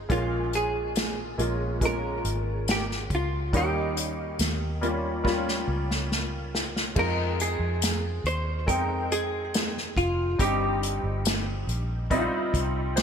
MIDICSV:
0, 0, Header, 1, 5, 480
1, 0, Start_track
1, 0, Tempo, 857143
1, 59, Time_signature, 4, 2, 24, 8
1, 7293, End_track
2, 0, Start_track
2, 0, Title_t, "Hollow-body jazz guitar"
2, 0, Program_c, 0, 26
2, 65, Note_on_c, 0, 65, 72
2, 309, Note_off_c, 0, 65, 0
2, 310, Note_on_c, 0, 68, 69
2, 1036, Note_off_c, 0, 68, 0
2, 1039, Note_on_c, 0, 70, 73
2, 1517, Note_off_c, 0, 70, 0
2, 1519, Note_on_c, 0, 67, 67
2, 1581, Note_off_c, 0, 67, 0
2, 1763, Note_on_c, 0, 65, 67
2, 1997, Note_on_c, 0, 67, 64
2, 1998, Note_off_c, 0, 65, 0
2, 2899, Note_off_c, 0, 67, 0
2, 2899, Note_on_c, 0, 65, 64
2, 3406, Note_off_c, 0, 65, 0
2, 3916, Note_on_c, 0, 70, 79
2, 4150, Note_off_c, 0, 70, 0
2, 4152, Note_on_c, 0, 68, 68
2, 4627, Note_off_c, 0, 68, 0
2, 4629, Note_on_c, 0, 72, 74
2, 4858, Note_off_c, 0, 72, 0
2, 4860, Note_on_c, 0, 70, 75
2, 5107, Note_off_c, 0, 70, 0
2, 5108, Note_on_c, 0, 68, 79
2, 5561, Note_off_c, 0, 68, 0
2, 5586, Note_on_c, 0, 65, 71
2, 5825, Note_off_c, 0, 65, 0
2, 5827, Note_on_c, 0, 67, 68
2, 6761, Note_off_c, 0, 67, 0
2, 7293, End_track
3, 0, Start_track
3, 0, Title_t, "Grand piano"
3, 0, Program_c, 1, 0
3, 0, Control_c, 1, 64, 127
3, 0, Note_on_c, 1, 56, 65
3, 0, Note_on_c, 1, 60, 61
3, 0, Note_on_c, 1, 63, 59
3, 0, Note_on_c, 1, 68, 73
3, 49, Note_off_c, 1, 56, 0
3, 49, Note_on_c, 1, 56, 58
3, 52, Note_on_c, 1, 46, 49
3, 52, Note_on_c, 1, 58, 53
3, 53, Note_on_c, 1, 61, 54
3, 55, Note_on_c, 1, 65, 63
3, 65, Control_c, 1, 64, 0
3, 67, Note_off_c, 1, 68, 0
3, 69, Note_off_c, 1, 60, 0
3, 71, Note_off_c, 1, 63, 0
3, 161, Control_c, 1, 64, 127
3, 738, Note_off_c, 1, 56, 0
3, 740, Note_off_c, 1, 58, 0
3, 740, Note_off_c, 1, 61, 0
3, 741, Note_off_c, 1, 65, 0
3, 753, Note_off_c, 1, 46, 0
3, 771, Note_on_c, 1, 56, 55
3, 772, Note_on_c, 1, 58, 48
3, 776, Note_on_c, 1, 61, 50
3, 778, Note_on_c, 1, 65, 61
3, 1003, Note_off_c, 1, 56, 0
3, 1004, Note_off_c, 1, 58, 0
3, 1005, Note_off_c, 1, 61, 0
3, 1006, Note_off_c, 1, 65, 0
3, 1012, Note_on_c, 1, 56, 57
3, 1014, Note_on_c, 1, 58, 49
3, 1016, Note_on_c, 1, 61, 52
3, 1019, Note_on_c, 1, 65, 62
3, 1927, Note_off_c, 1, 56, 0
3, 1928, Note_off_c, 1, 58, 0
3, 1929, Note_off_c, 1, 61, 0
3, 1931, Note_off_c, 1, 65, 0
3, 1975, Note_on_c, 1, 55, 55
3, 1976, Note_on_c, 1, 58, 51
3, 1977, Note_on_c, 1, 51, 49
3, 1980, Note_on_c, 1, 61, 48
3, 1981, Note_on_c, 1, 63, 60
3, 1987, Control_c, 1, 64, 0
3, 2097, Control_c, 1, 64, 127
3, 2661, Note_off_c, 1, 55, 0
3, 2662, Note_off_c, 1, 58, 0
3, 2663, Note_off_c, 1, 61, 0
3, 2664, Note_off_c, 1, 63, 0
3, 2675, Note_off_c, 1, 51, 0
3, 2695, Note_on_c, 1, 55, 59
3, 2697, Note_on_c, 1, 58, 55
3, 2701, Note_on_c, 1, 61, 55
3, 2703, Note_on_c, 1, 65, 63
3, 2923, Note_off_c, 1, 55, 0
3, 2925, Note_off_c, 1, 58, 0
3, 2927, Note_off_c, 1, 61, 0
3, 2929, Note_off_c, 1, 65, 0
3, 2932, Note_on_c, 1, 55, 65
3, 2933, Note_on_c, 1, 58, 55
3, 2935, Note_on_c, 1, 61, 60
3, 2938, Note_on_c, 1, 65, 73
3, 3847, Note_off_c, 1, 55, 0
3, 3848, Note_off_c, 1, 58, 0
3, 3849, Note_off_c, 1, 61, 0
3, 3851, Note_off_c, 1, 65, 0
3, 3894, Note_on_c, 1, 56, 57
3, 3897, Note_on_c, 1, 60, 50
3, 3897, Note_on_c, 1, 63, 49
3, 3900, Note_on_c, 1, 65, 66
3, 3907, Control_c, 1, 64, 0
3, 4019, Control_c, 1, 64, 127
3, 4809, Note_off_c, 1, 56, 0
3, 4810, Note_off_c, 1, 60, 0
3, 4810, Note_off_c, 1, 63, 0
3, 4812, Note_off_c, 1, 65, 0
3, 4851, Note_on_c, 1, 56, 57
3, 4855, Note_on_c, 1, 60, 54
3, 4857, Note_on_c, 1, 63, 52
3, 4858, Note_on_c, 1, 79, 62
3, 5767, Note_off_c, 1, 56, 0
3, 5769, Note_off_c, 1, 60, 0
3, 5770, Note_off_c, 1, 63, 0
3, 5770, Note_off_c, 1, 79, 0
3, 5816, Note_on_c, 1, 55, 58
3, 5816, Note_on_c, 1, 60, 58
3, 5818, Note_on_c, 1, 43, 50
3, 5818, Note_on_c, 1, 63, 57
3, 5821, Note_on_c, 1, 67, 68
3, 5826, Control_c, 1, 64, 0
3, 5910, Control_c, 1, 64, 127
3, 6516, Note_off_c, 1, 43, 0
3, 6729, Note_off_c, 1, 55, 0
3, 6729, Note_off_c, 1, 60, 0
3, 6731, Note_off_c, 1, 63, 0
3, 6732, Note_off_c, 1, 67, 0
3, 6777, Note_on_c, 1, 55, 74
3, 6779, Note_on_c, 1, 60, 70
3, 6781, Note_on_c, 1, 63, 69
3, 6785, Note_on_c, 1, 64, 63
3, 6818, Note_off_c, 1, 64, 0
3, 6820, Note_on_c, 1, 65, 79
3, 7258, Note_on_c, 1, 72, 55
3, 7259, Note_off_c, 1, 60, 0
3, 7260, Note_off_c, 1, 63, 0
3, 7262, Note_on_c, 1, 67, 47
3, 7279, Note_off_c, 1, 65, 0
3, 7293, Note_off_c, 1, 55, 0
3, 7293, Note_off_c, 1, 67, 0
3, 7293, Note_off_c, 1, 72, 0
3, 7293, End_track
4, 0, Start_track
4, 0, Title_t, "Fingered electric bass"
4, 0, Program_c, 2, 33
4, 55, Note_on_c, 2, 34, 81
4, 754, Note_off_c, 2, 34, 0
4, 776, Note_on_c, 2, 34, 73
4, 1235, Note_off_c, 2, 34, 0
4, 1257, Note_on_c, 2, 32, 71
4, 1715, Note_off_c, 2, 32, 0
4, 1736, Note_on_c, 2, 37, 69
4, 1977, Note_off_c, 2, 37, 0
4, 1977, Note_on_c, 2, 39, 81
4, 2436, Note_off_c, 2, 39, 0
4, 2461, Note_on_c, 2, 39, 72
4, 3157, Note_off_c, 2, 39, 0
4, 3179, Note_on_c, 2, 37, 70
4, 3876, Note_off_c, 2, 37, 0
4, 3900, Note_on_c, 2, 41, 72
4, 4237, Note_off_c, 2, 41, 0
4, 4253, Note_on_c, 2, 41, 68
4, 4593, Note_off_c, 2, 41, 0
4, 4615, Note_on_c, 2, 39, 69
4, 4859, Note_off_c, 2, 39, 0
4, 4859, Note_on_c, 2, 41, 82
4, 5557, Note_off_c, 2, 41, 0
4, 5578, Note_on_c, 2, 29, 70
4, 5802, Note_off_c, 2, 29, 0
4, 5821, Note_on_c, 2, 31, 84
4, 6157, Note_off_c, 2, 31, 0
4, 6179, Note_on_c, 2, 31, 73
4, 6517, Note_off_c, 2, 31, 0
4, 6537, Note_on_c, 2, 34, 76
4, 6876, Note_off_c, 2, 34, 0
4, 7021, Note_on_c, 2, 36, 66
4, 7293, Note_off_c, 2, 36, 0
4, 7293, End_track
5, 0, Start_track
5, 0, Title_t, "Drums"
5, 55, Note_on_c, 9, 36, 91
5, 56, Note_on_c, 9, 42, 73
5, 111, Note_off_c, 9, 36, 0
5, 112, Note_off_c, 9, 42, 0
5, 297, Note_on_c, 9, 42, 60
5, 353, Note_off_c, 9, 42, 0
5, 534, Note_on_c, 9, 42, 75
5, 544, Note_on_c, 9, 38, 91
5, 590, Note_off_c, 9, 42, 0
5, 600, Note_off_c, 9, 38, 0
5, 779, Note_on_c, 9, 42, 45
5, 835, Note_off_c, 9, 42, 0
5, 1016, Note_on_c, 9, 36, 74
5, 1016, Note_on_c, 9, 42, 62
5, 1072, Note_off_c, 9, 36, 0
5, 1072, Note_off_c, 9, 42, 0
5, 1258, Note_on_c, 9, 42, 50
5, 1314, Note_off_c, 9, 42, 0
5, 1499, Note_on_c, 9, 42, 72
5, 1506, Note_on_c, 9, 38, 84
5, 1555, Note_off_c, 9, 42, 0
5, 1562, Note_off_c, 9, 38, 0
5, 1631, Note_on_c, 9, 38, 28
5, 1687, Note_off_c, 9, 38, 0
5, 1738, Note_on_c, 9, 36, 76
5, 1738, Note_on_c, 9, 42, 54
5, 1794, Note_off_c, 9, 36, 0
5, 1794, Note_off_c, 9, 42, 0
5, 1979, Note_on_c, 9, 36, 89
5, 1981, Note_on_c, 9, 42, 72
5, 2035, Note_off_c, 9, 36, 0
5, 2037, Note_off_c, 9, 42, 0
5, 2222, Note_on_c, 9, 42, 61
5, 2278, Note_off_c, 9, 42, 0
5, 2459, Note_on_c, 9, 42, 70
5, 2468, Note_on_c, 9, 38, 85
5, 2515, Note_off_c, 9, 42, 0
5, 2524, Note_off_c, 9, 38, 0
5, 2703, Note_on_c, 9, 42, 44
5, 2759, Note_off_c, 9, 42, 0
5, 2939, Note_on_c, 9, 36, 71
5, 2949, Note_on_c, 9, 38, 41
5, 2995, Note_off_c, 9, 36, 0
5, 3005, Note_off_c, 9, 38, 0
5, 3070, Note_on_c, 9, 38, 38
5, 3126, Note_off_c, 9, 38, 0
5, 3309, Note_on_c, 9, 38, 50
5, 3365, Note_off_c, 9, 38, 0
5, 3426, Note_on_c, 9, 38, 58
5, 3482, Note_off_c, 9, 38, 0
5, 3666, Note_on_c, 9, 38, 73
5, 3722, Note_off_c, 9, 38, 0
5, 3788, Note_on_c, 9, 38, 63
5, 3844, Note_off_c, 9, 38, 0
5, 3898, Note_on_c, 9, 49, 74
5, 3899, Note_on_c, 9, 36, 89
5, 3954, Note_off_c, 9, 49, 0
5, 3955, Note_off_c, 9, 36, 0
5, 4143, Note_on_c, 9, 42, 64
5, 4199, Note_off_c, 9, 42, 0
5, 4378, Note_on_c, 9, 42, 77
5, 4388, Note_on_c, 9, 38, 84
5, 4434, Note_off_c, 9, 42, 0
5, 4444, Note_off_c, 9, 38, 0
5, 4623, Note_on_c, 9, 42, 47
5, 4679, Note_off_c, 9, 42, 0
5, 4860, Note_on_c, 9, 36, 76
5, 4864, Note_on_c, 9, 42, 69
5, 4916, Note_off_c, 9, 36, 0
5, 4920, Note_off_c, 9, 42, 0
5, 5105, Note_on_c, 9, 42, 53
5, 5161, Note_off_c, 9, 42, 0
5, 5343, Note_on_c, 9, 42, 80
5, 5350, Note_on_c, 9, 38, 88
5, 5399, Note_off_c, 9, 42, 0
5, 5406, Note_off_c, 9, 38, 0
5, 5474, Note_on_c, 9, 38, 29
5, 5530, Note_off_c, 9, 38, 0
5, 5581, Note_on_c, 9, 36, 83
5, 5584, Note_on_c, 9, 42, 57
5, 5637, Note_off_c, 9, 36, 0
5, 5640, Note_off_c, 9, 42, 0
5, 5821, Note_on_c, 9, 36, 93
5, 5822, Note_on_c, 9, 42, 76
5, 5877, Note_off_c, 9, 36, 0
5, 5878, Note_off_c, 9, 42, 0
5, 6065, Note_on_c, 9, 42, 62
5, 6121, Note_off_c, 9, 42, 0
5, 6301, Note_on_c, 9, 42, 76
5, 6310, Note_on_c, 9, 38, 97
5, 6357, Note_off_c, 9, 42, 0
5, 6366, Note_off_c, 9, 38, 0
5, 6545, Note_on_c, 9, 42, 47
5, 6601, Note_off_c, 9, 42, 0
5, 6780, Note_on_c, 9, 36, 82
5, 6781, Note_on_c, 9, 42, 67
5, 6836, Note_off_c, 9, 36, 0
5, 6837, Note_off_c, 9, 42, 0
5, 7022, Note_on_c, 9, 36, 71
5, 7024, Note_on_c, 9, 42, 58
5, 7078, Note_off_c, 9, 36, 0
5, 7080, Note_off_c, 9, 42, 0
5, 7261, Note_on_c, 9, 42, 82
5, 7268, Note_on_c, 9, 38, 90
5, 7293, Note_off_c, 9, 38, 0
5, 7293, Note_off_c, 9, 42, 0
5, 7293, End_track
0, 0, End_of_file